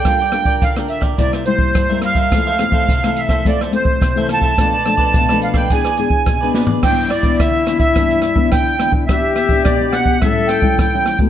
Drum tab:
CC |----------------|----------------|----------------|x---------------|
HH |x-xxx-x-xxx-xxxx|x-x-xxx-xxx-xxx-|x-xxx-x-xxx-xx--|--xxx-xxxxx-xxx-|
SD |r-r--r-r-r--r-r-|r-r--r-r-r--r-r-|r-r--r-r-r--r-o-|r-r-r-r-r-r-r-r-|
FT |----------------|----------------|---------------o|----------------|
BD |o--oo--oo--oo--o|o--oo--oo--oo--o|o--oo--oo--oo---|o--oo--oo--oo--o|

CC |----------------|
HH |x-xxx-x-x-x-x-xx|
SD |r-r-r-r-r-r-r-r-|
FT |----------------|
BD |o--oo--oo--oo--o|